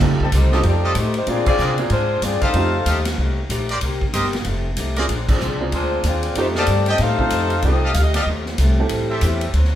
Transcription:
0.00 F1 F3 A3 C4 D#4 F4 G4 A4, kick, crash
0.20 G3 C4 D#4 A4, kick
0.32 C2 F3 A3 D#4 G4 C5, kick, hi-hat pedal, ride
0.52 C4 D#4 F4 G4 A4 D#5, snare
0.63 F2 F3 A3 A4 D5, kick, ride
0.67 C4 D#4 G4
0.84 F4 G4 A4 D#5
0.95 A2 F3 A3 D#4 G4 C5, kick, hi-hat pedal, ride
1.14 D#4 G4 C5, ride
1.18 A3
1.27 A#2 G#3 A#3 C4 D4 F4 G#4 D5, kick, ride
1.46 C4 F4 G#4 D5, kick, crash
1.58 A#2 C3 G#3 C4 D4 G#4 A#4 C5 D5, hi-hat pedal
1.78 A#3 C4 D4 F4 G#4, ride
1.90 G#2 A#2 G#3 C4 D4 F4 C5, kick, ride
2.22 G2 A#2 G#3 C4 D4 F4 G#4 D5, kick, hi-hat pedal, ride
2.42 D#4 G4 A4 C5 D#5 F5, muted upright bass stroke, kick, ride
2.54 F2 F3 A3 C4 D#4 F4 G4, kick, ride
2.86 D#2 F3 A3 D#4 G4 A4 D#5 F5, kick, hi-hat pedal, ride
3.05 snare, ride
3.18 C2 F3 A3 D#4 G4, kick
3.49 A#1 F3 A3 D#4 G4, kick, hi-hat pedal, ride
3.69 G4 A#4 C5 D5, ride
3.81 C2 C3 A#3 D#4 G4, kick, ride
4.01 kick
4.14 G1 C3 A#3 D#4 G4 A#4 C5 D#5, kick, hi-hat pedal, ride
4.25 snare
4.33 snare, ride
4.44 F1 F3 A3 D#4 G4, kick, ride
4.77 C2 F3 A3 D#4 G4, kick, hi-hat pedal, ride
4.96 A#3 C4 D4 F4 G#4 A#4 C5 D5, ride
5.09 A#1 A#2 G#3 C4 D4, kick, ride
5.29 F3 C4 D4 G#4, kick, crash
5.40 C2 A#2 G#3 C4 D4, hi-hat pedal
5.60 A#3 C4 D4 F4 G#4
5.72 D2 A#2 G#3 C4 D4 F4 C5, kick, ride
6.04 D#2 A#2 G#3 C4 D4 F4 G#4 D5, kick, hi-hat pedal, ride
6.23 ride
6.35 F2 F3 A3 C4 D#4 F4 G4 C5, kick, ride
6.55 C4 G4 A4 D5 D#5 F5, snare
6.66 G2 F3 A3 D#4, kick, hi-hat pedal, ride
6.71 G4
6.86 C4 G4 A4 D#5 G5, ride
6.90 G4 A4 D#5
6.98 A2 F3 A3 D#4 C5 F5, kick, snare, ride
7.02 G4 A4
7.19 A3 C4 D#4 F4 A4, kick
7.30 F2 F3 A3 D#4 G4, kick, hi-hat pedal, ride
7.50 ride
7.62 C2 F3 A3 C4 D#4 F4 G4 A4 D#5, kick, ride
7.83 G4 A4 D#5 F5
7.94 D2 F3 A3 D#4 F5, kick, hi-hat pedal, ride
7.98 G4
8.03 D#5
8.14 G4 A4 D5 D#5 F5, snare, ride
8.22 D#2 D#5
8.27 F3 A3 D#4 G4, kick
8.46 snare
8.58 C2 F3 A3 D#4 G4, kick, hi-hat pedal, ride
8.79 A3 C4 E4 G4 A4
8.89 A1 A2 G3 C4 E4, kick, ride
9.10 G4 A4 C5 E5
9.21 E2 A2 G3 C4 E4, kick, hi-hat pedal, ride
9.41 ride
9.53 D2 D3 F#3 C4 D#4, kick, ride
9.64 snare

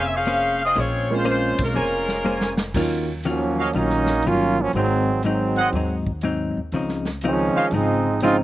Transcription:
Already playing: F1 A#3 C#4 G#4 A#4 C5 G#5
0.05 E5
0.16 C#4 G#4 C5 F5
0.25 A#3 C#4 G#4 C5, closed hi-hat
0.59 open hi-hat
0.65 C4 F4 G#4 D#5
0.75 A#1 A#3 C#4 G#4 C5, open hi-hat
0.79 G#3 C4 F4 C#5
1.10 G#3 A#3 C4 C#4 F4 C5
1.25 A#3 C#4 G#4 C5, closed hi-hat
1.29 G#3 C#4 F4 C5
1.58 B1, kick, ride
1.63 G#3 C#4 F4 A#4
1.74 F1 A#3 C#4 G#4 A#4 C5 C#5 G#5
2.09 snare
2.24 A#3 C#4 G#4 C5, high tom
2.41 snare
2.57 snare
2.74 D#2 D#3 F#3 A#3 C#4 D#4 F4, kick, crash
3.23 D#3 F#3 C#4 F4, closed hi-hat
3.28 F3 F#3 A#3 C#4
3.58 F#4 C#5 D#5 F5
3.73 A#1 D#3 F#3 A#3 C#4 D#4 F4, open hi-hat
3.90 snare
4.06 snare
4.22 G1 D#3 F#3 A#3 C#4 F4, closed hi-hat
4.27 F#3 C#4 F4
4.60 F3 F#3 A#3 C#4
4.73 G#1 G#2 D#3 F#3 G#3 C4 D#4, open hi-hat
5.23 G#2 D#3 F#3 G#3 C4 D#4, closed hi-hat
5.56 G#4 C5 D#5 F#5, open hi-hat
5.72 D#2 G#2 F#3 C4, open hi-hat
5.77 D#4
6.07 kick
6.21 G#2 F#3 C4 D#4, closed hi-hat
6.57 D#2
6.72 C#2 C#3 F3 C4, open hi-hat
6.76 D#4
6.89 snare
7.05 snare
7.21 C#3 F3 C4 D#4, closed hi-hat
7.26 D#3 F3 G#3 C#4
7.56 C5 C#5 D#5 F5, muted upright bass stroke
7.71 G#1 C#3 F3 G#3 C4 D#4, open hi-hat
7.75 F3
8.20 C#3 F3 G#3 C4 C#4 D#4 F4, closed hi-hat
8.24 F4

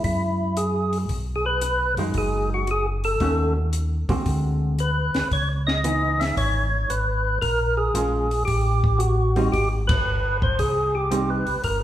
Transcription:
0.04 F#2 E4, kick, open hi-hat
0.57 G#4, closed hi-hat
0.93 open hi-hat
1.09 B1, kick, open hi-hat
1.36 G#4
1.46 B4
1.61 closed hi-hat
1.97 F#2 F#3 G#3 D#4, open hi-hat
2.14 F#1 G#4, kick, open hi-hat
2.54 F#4
2.67 G#4, closed hi-hat
3.04 A4, open hi-hat
3.20 D#2 D#3 A3 C#4 F#4, kick, open hi-hat
3.73 closed hi-hat
4.09 D#2 D3 G#3 C4 F#4, kick, open hi-hat
4.26 D2, kick, open hi-hat
4.79 B4, closed hi-hat
5.14 D2, snare, open hi-hat
5.31 C#2 C#5, kick, open hi-hat
5.67 D#5, snare
5.84 E3 B3 D#4, closed hi-hat
6.20 E5, snare, open hi-hat
6.37 G#1 C#5, kick, open hi-hat
6.89 G#1 B4, closed hi-hat
7.42 A#1 A#4, kick, open hi-hat
7.77 G#4
7.94 A#1 F3 G#3 C#4, closed hi-hat
8.31 open hi-hat
8.45 A1 G4, kick, open hi-hat
8.84 kick
8.98 F#4, closed hi-hat
9.36 G3 C4 D#4, open hi-hat
9.52 G#1 G4, kick, open hi-hat
9.87 B4, kick, ride
10.06 G1
10.42 C5, kick
10.59 C2 G#4, kick, open hi-hat
10.95 G4
11.11 G3 C4 D#4, closed hi-hat
11.30 B4
11.47 C2, open hi-hat
11.64 G1 A#4, kick, open hi-hat

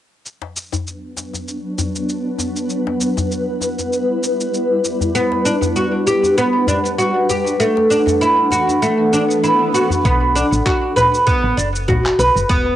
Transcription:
0.26 F#3 B3 D4 B4, shaker
0.42 djembe slap
0.56 shaker
0.72 djembe slap, djembe bass, shaker
0.87 shaker
1.17 djembe slap, shaker
1.33 djembe tone, shaker
1.48 shaker
1.78 djembe slap, djembe bass, shaker
1.96 shaker
2.09 shaker
2.39 djembe slap, djembe tone, shaker
2.56 shaker
2.70 G3 E4, shaker
2.87 djembe slap
3.01 djembe tone, shaker
3.17 djembe slap, djembe bass, shaker
3.31 shaker
3.61 djembe slap, djembe tone, shaker
3.79 djembe tone, shaker
3.93 shaker
4.23 shaker
4.40 shaker
4.54 shaker
4.84 djembe slap, shaker
5.01 djembe bass, shaker
5.15 B3 D4 F#5, shaker
5.32 djembe slap
5.45 D4, shaker
5.62 djembe slap, djembe bass, shaker
5.76 F#4, shaker
6.07 G4, djembe slap, shaker
6.23 djembe tone, shaker
6.38 B3, shaker
6.67 D4, djembe slap, djembe bass, shaker
6.86 shaker
6.98 F#4, shaker
7.29 G4, djembe slap, djembe tone, shaker
7.47 shaker
7.60 E3 A3 A4, shaker
7.77 djembe slap
7.89 D4, djembe tone, shaker
8.07 djembe slap, djembe bass, shaker
8.21 E4, shaker
8.51 F#4, djembe slap, djembe tone, shaker
8.68 djembe tone, shaker
8.82 A3, swell, shaker
9.13 D4, shaker
9.31 shaker
9.44 E4, shaker
9.73 F#4, djembe slap, shaker
9.90 djembe bass, shaker
10.05 B1 B3, kick, shaker
10.35 D4, shaker
10.52 A1, shaker
10.66 F#4, kick, clap, shaker
10.96 B4, low conga, shaker
11.14 shaker
11.27 B3, kick, shaker
11.44 A1
11.57 F#1 D4, shaker
11.75 shaker
11.88 F#4, kick, low conga, shaker
12.06 clap
12.19 B1 B4, shaker
12.36 F#1, shaker
12.49 E1 B3, kick, shaker

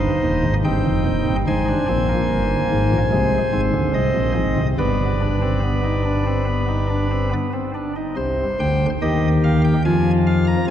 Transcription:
Already playing: D#4 C5 D#5
0.24 D#1 D#2
0.44 G#1 G#2
0.64 G1 G2 C4 D#4 G5
0.85 F1 F2
1.06 D#1 D#2
1.27 G1 G2
1.47 G#1 G#2 D#4 C5 G#5
1.68 D4
1.88 A#1 A#2 C4
2.09 A#3
2.30 G1 G2
2.71 G#1 G#2
2.92 A#1 A#2
3.12 C2 C3 G#3
3.53 G#1 G#2 C4
3.73 D2 D3
3.94 C2 C3 D#5
4.15 A#1 A#2
4.36 G#1 G#2
4.57 C2 C3
4.78 G1 G2 B3 B4 D5
5.21 D4
5.42 C4
5.63 B3
5.84 D#4
6.05 D4
6.26 C4
6.47 B3
6.68 D#4
6.90 D4
7.11 C4
7.31 B3
7.53 C4
7.74 D4
7.96 D#4
8.17 C2 C3 C5
8.60 D2 D3 G5
9.02 D#2 D#3 G4 D#5
9.44 F5
9.64 G5
9.85 F2 F3 F4 G#5
10.27 F5
10.47 A#5

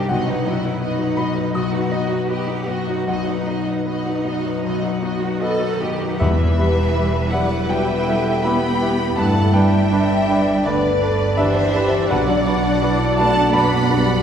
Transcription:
Already playing: C2 G2 C3 D#3 G3 D4 D#4 G4 C5 G5
0.09 B1 B2 B3 D#4 F#4 D#5 F#5
0.28 F#3 D#4 B4 F#5
0.34 F#3
0.46 F#2 B3 E4 F#4 D#5
0.59 D#4
0.64 F#3 D#4 B4 F#5
0.81 B3 D#4 F#4 B4 D#5
0.99 F#3 D#4 B4 F#5
1.06 D#4
1.16 F#2 B3 F#4 D#5 B5
1.35 F#3 D#4 B4 F#5
1.54 B1 B2 B3 F#4 D#5 D#6
1.72 F#3 D#4 B4 F#5
1.80 D#4
1.90 B3 D#4 F#4 D#5
2.09 F#3 D#4 B4 F#5
2.29 B3 F#4 G4 B4 D#5
2.48 F#3 D#4 B4 F#5
2.55 D#4
2.67 F#2 B3 F#4 D#5
2.87 F#3 D#4 B4 F#5
3.06 B1 B2 B3 D#4 F#4 D#5 F#5
3.27 F#3 D#4 B4 F#5
3.35 D#4
3.46 B3 D#4 F#4 D#5
3.65 F#3 D#4 B4 F#5
3.70 D#4
3.85 B3 D#4 F#4 B4 D#5
4.05 F#3 D#4 B4 F#5
4.13 D#4
4.25 F#2 B3 F#4 D#5
4.43 F#3 D#4 B4 F#5
4.64 B1 B2 B3 F#4 D#5
4.83 F#3 D#4 B4 F#5
4.91 D#4
5.02 B3 D#4 F#4 D#5
5.22 F#3 D#4 B4 F#5
5.40 D#3 B3 F#4 A4 B4 D#5
5.60 F#3 D#4 B4 F#5
5.68 D#4
5.79 F#2 B3 F#4 G4 D#5
5.99 F#3 D#4 B4 F#5
6.18 E1 E2 E3 E4 G4 B4 E5
6.39 E4
6.58 G3 G4 B4 E5
6.95 G3 G4 B4 E5 E6
7.15 B5
7.31 F#3 E4 G4 B4 D5 E5 F#5
7.52 E5
7.69 B2 G3 G4 B4 E5 G5
7.89 G3
8.06 G3 G4 A4 B4 E5
8.43 G3 B3 E4 G4 B4 E5 G5 B5 E6
8.63 B5
8.81 G3 G4 B4 E5
9.00 E5
9.16 G1 G2 A3 D4 E4 B4 D5 F#5 A5
9.37 D4
9.54 G3 D4 B4 D5 E5 G5
9.72 D5
9.91 D4 B4 D5 D6
10.10 B5
10.28 D4 B4 D5
10.65 D2 D3 D4 B4 D5
10.83 D4
11.01 D4 A4 B4 D5
11.20 D5
11.37 E3 D4 G4 B4 C5 D5 E5 D6
11.57 B5
11.73 D4 G4 B4 D5
11.94 B4
12.09 B1 B2 F#3 D4 F#4 B4 D5 F#5
12.28 D4
12.47 D4 F#4 B4 D5
12.81 D4 E4 F#4 B4 D5 D6
13.18 A3 D4 F#4 B4 D5 F#5 A5
13.22 D4
13.53 F#2 B3 D4 F#4 B4 F#5 B5
13.72 D4
13.89 G3 D4 F#4 B4 D5
14.08 D5

